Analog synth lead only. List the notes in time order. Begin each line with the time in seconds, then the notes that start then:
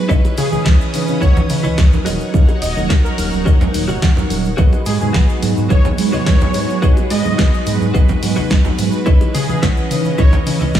0.38 G#4
0.52 G#4
1.21 C#5
2.62 D#5
3.04 A#4
3.18 A#4
4.86 G#4
5.01 G#4
5.71 C#5
6.13 C#5
7.10 D#5
9.34 G#4
9.49 G#4
10.19 C#5